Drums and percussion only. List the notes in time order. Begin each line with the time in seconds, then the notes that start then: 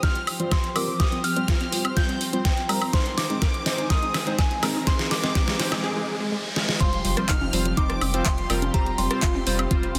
0.03 kick, snare, closed hi-hat
0.15 closed hi-hat
0.27 open hi-hat, high woodblock
0.40 closed hi-hat
0.51 kick, snare, closed hi-hat, high woodblock
0.64 closed hi-hat
0.76 open hi-hat, high woodblock
1.00 kick, snare, closed hi-hat
1.12 closed hi-hat
1.24 open hi-hat
1.36 closed hi-hat
1.48 kick, snare, closed hi-hat
1.61 closed hi-hat
1.72 open hi-hat
1.85 closed hi-hat, high woodblock
1.97 kick, snare, closed hi-hat
2.09 closed hi-hat
2.21 open hi-hat
2.33 closed hi-hat
2.45 kick, snare, closed hi-hat
2.57 closed hi-hat
2.69 open hi-hat, high woodblock
2.82 open hi-hat, high woodblock
2.93 kick, snare, closed hi-hat
3.06 closed hi-hat
3.18 snare, open hi-hat
3.30 closed hi-hat
3.42 kick, snare, closed hi-hat
3.54 closed hi-hat
3.66 snare, open hi-hat
3.78 closed hi-hat
3.90 kick, snare, closed hi-hat
4.03 closed hi-hat
4.14 snare, open hi-hat, high woodblock
4.27 closed hi-hat
4.39 kick, snare, closed hi-hat, high woodblock
4.51 closed hi-hat
4.63 snare, open hi-hat, high woodblock
4.87 kick, snare, closed hi-hat
4.99 snare, closed hi-hat
5.11 snare, open hi-hat
5.24 snare, closed hi-hat
5.35 kick, snare, closed hi-hat
5.48 snare, closed hi-hat
5.60 snare, open hi-hat
5.72 snare, closed hi-hat, high woodblock
6.56 snare
6.69 snare
6.81 kick, closed hi-hat
6.93 closed hi-hat
7.05 open hi-hat, low conga
7.17 cross-stick, closed hi-hat
7.29 kick, clap, closed hi-hat
7.41 high conga
7.53 open hi-hat
7.65 closed hi-hat, low conga
7.77 kick, closed hi-hat
7.90 cross-stick, closed hi-hat
8.01 open hi-hat, high conga, high woodblock
8.14 closed hi-hat
8.25 kick, clap, closed hi-hat, high woodblock
8.38 closed hi-hat
8.50 open hi-hat, high woodblock
8.62 closed hi-hat, high conga
8.74 kick, closed hi-hat
8.86 closed hi-hat
8.98 open hi-hat, low conga
9.11 cross-stick, closed hi-hat
9.22 kick, clap, closed hi-hat
9.35 high conga
9.47 open hi-hat
9.59 closed hi-hat, high woodblock
9.71 kick, closed hi-hat
9.83 closed hi-hat
9.95 open hi-hat, high conga